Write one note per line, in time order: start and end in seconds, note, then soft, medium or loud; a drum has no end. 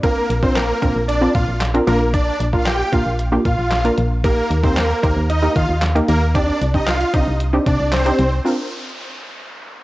0.03 0.26 A#3 medium
0.03 0.31 C4 medium
0.03 0.31 D4 medium
0.03 0.31 F4 medium
0.03 0.25 A#4 loud
0.03 0.31 A#4 medium
0.03 kick loud
0.03 closed hi-hat medium
0.30 0.72 A#1 medium
0.30 closed hi-hat medium
0.43 0.70 C4 medium
0.43 0.54 C4 medium
0.43 0.70 D4 medium
0.43 0.70 F4 medium
0.43 0.71 A#4 medium
0.43 0.54 C5 medium
0.43 kick medium
0.56 0.78 A#3 medium
0.56 0.78 A#4 medium
0.56 snare loud
0.56 clap loud
0.56 closed hi-hat loud
0.82 0.93 A#1 medium
0.82 0.93 A#3 medium
0.82 1.10 C4 medium
0.82 1.10 D4 medium
0.82 1.10 F4 medium
0.82 0.93 A#4 medium
0.82 1.10 A#4 medium
0.82 kick loud
0.82 closed hi-hat medium
0.96 1.28 A#1 medium
1.08 1.31 D4 medium
1.08 1.31 D5 medium
1.08 closed hi-hat medium
1.21 1.58 C4 medium
1.21 1.59 D4 medium
1.21 1.59 F4 medium
1.21 1.59 A#4 medium
1.35 1.45 A#2 loud
1.35 1.46 F4 medium
1.35 1.46 F5 medium
1.35 kick loud
1.35 closed hi-hat medium
1.48 1.80 A#1 medium
1.61 snare medium
1.61 clap loud
1.61 closed hi-hat loud
1.74 1.87 C4 medium
1.74 1.86 D4 medium
1.74 1.86 F4 medium
1.74 1.86 A#4 medium
1.74 closed hi-hat medium
1.87 2.30 A#1 loud
1.87 2.40 A#3 medium
1.87 1.99 A#3 medium
1.87 2.40 D4 medium
1.87 2.40 F4 medium
1.87 1.99 A#4 medium
1.87 2.40 A#4 medium
1.87 closed hi-hat medium
2.14 2.36 D4 medium
2.14 2.36 D5 loud
2.14 kick loud
2.14 closed hi-hat medium
2.40 2.83 A#1 medium
2.40 closed hi-hat medium
2.53 2.81 A#3 medium
2.53 2.81 D4 medium
2.53 2.81 F4 medium
2.53 2.65 F4 medium
2.53 2.81 A#4 medium
2.53 2.64 F5 medium
2.53 kick medium
2.66 2.89 G4 medium
2.66 2.89 G5 medium
2.66 snare loud
2.66 clap loud
2.66 closed hi-hat loud
2.92 3.03 A#1 medium
2.92 3.20 A#3 medium
2.92 3.20 D4 medium
2.92 3.20 F4 medium
2.92 3.04 F4 medium
2.92 3.21 A#4 medium
2.92 3.04 F5 medium
2.92 kick loud
2.92 closed hi-hat medium
3.06 3.38 A#1 medium
3.19 closed hi-hat medium
3.32 3.69 A#3 medium
3.32 3.69 D4 medium
3.32 3.69 F4 medium
3.32 3.69 G4 medium
3.45 3.56 A#2 medium
3.45 3.83 F4 medium
3.45 3.82 F5 medium
3.45 kick loud
3.45 closed hi-hat medium
3.58 3.91 A#1 medium
3.71 snare medium
3.71 clap loud
3.71 closed hi-hat medium
3.85 4.12 A#3 medium
3.85 4.13 D4 medium
3.85 4.13 F4 medium
3.85 4.13 A#4 medium
3.85 closed hi-hat medium
3.98 4.41 A#1 loud
3.98 closed hi-hat medium
4.24 4.52 A#3 medium
4.24 4.47 A#3 medium
4.24 4.52 D#4 medium
4.24 4.52 G4 medium
4.24 4.46 A#4 loud
4.24 4.52 A#4 medium
4.24 kick loud
4.24 closed hi-hat medium
4.50 4.93 D#2 medium
4.50 closed hi-hat medium
4.63 4.91 A#3 medium
4.63 4.75 C4 medium
4.63 4.91 D#4 medium
4.63 4.92 G4 medium
4.63 4.92 A#4 medium
4.63 4.75 C5 medium
4.63 kick medium
4.77 4.99 A#3 medium
4.77 4.99 A#4 medium
4.77 snare medium
4.77 clap loud
4.77 closed hi-hat loud
5.03 5.14 D#2 loud
5.03 5.31 A#3 medium
5.03 5.15 A#3 medium
5.03 5.31 D#4 medium
5.03 5.31 G4 medium
5.03 5.14 A#4 medium
5.03 5.31 C5 medium
5.03 kick loud
5.03 closed hi-hat medium
5.16 5.48 D#2 medium
5.29 5.52 D#4 medium
5.29 5.52 D#5 medium
5.29 closed hi-hat medium
5.42 5.80 A#3 medium
5.42 5.80 D#4 medium
5.42 5.80 G4 medium
5.42 5.80 A#4 medium
5.56 5.67 D#3 medium
5.56 5.67 F4 medium
5.56 5.67 F5 medium
5.56 kick loud
5.56 closed hi-hat medium
5.69 6.01 D#2 medium
5.82 snare medium
5.82 clap loud
5.82 closed hi-hat medium
5.95 6.23 A#3 medium
5.95 6.23 D#4 medium
5.95 6.23 G4 medium
5.95 6.23 A#4 medium
5.95 closed hi-hat medium
6.08 6.51 D#2 loud
6.08 6.20 A#3 medium
6.08 6.20 A#4 medium
6.08 closed hi-hat medium
6.35 6.62 C4 medium
6.35 6.62 D4 medium
6.35 6.57 D4 medium
6.35 6.62 D#4 medium
6.35 6.63 G4 medium
6.35 6.57 D5 loud
6.35 kick loud
6.35 closed hi-hat medium
6.61 7.04 C2 medium
6.61 closed hi-hat medium
6.74 7.02 C4 medium
6.74 7.02 D4 medium
6.74 7.02 D#4 medium
6.74 6.86 D#4 medium
6.74 7.02 G4 medium
6.74 6.85 D#5 medium
6.74 kick medium
6.87 7.10 F4 medium
6.87 7.10 F5 medium
6.87 snare medium
6.87 clap loud
6.87 closed hi-hat loud
7.01 closed hi-hat medium
7.13 7.25 C2 medium
7.13 7.41 C4 medium
7.13 7.41 D4 medium
7.13 7.41 D#4 medium
7.13 7.25 D#4 medium
7.13 7.42 G4 medium
7.13 7.25 D#5 medium
7.13 kick loud
7.13 closed hi-hat medium
7.27 7.59 C2 medium
7.40 closed hi-hat medium
7.53 7.90 C4 medium
7.53 7.90 D4 medium
7.53 7.90 D#4 medium
7.53 7.90 G4 medium
7.66 7.77 C3 medium
7.66 7.89 D4 medium
7.66 7.89 D5 medium
7.66 kick loud
7.66 closed hi-hat medium
7.80 8.12 C2 medium
7.92 8.30 C4 medium
7.92 8.30 C5 medium
7.92 snare medium
7.92 clap loud
7.92 closed hi-hat loud
8.05 8.33 C4 medium
8.05 8.34 D4 medium
8.05 8.34 D#4 medium
8.05 8.34 G4 medium
8.05 closed hi-hat medium
8.19 8.40 C2 loud
8.19 closed hi-hat medium
8.45 9.84 C4 medium
8.45 9.84 D4 medium
8.45 9.84 F4 medium
8.45 9.84 A#4 medium
8.45 downlifter medium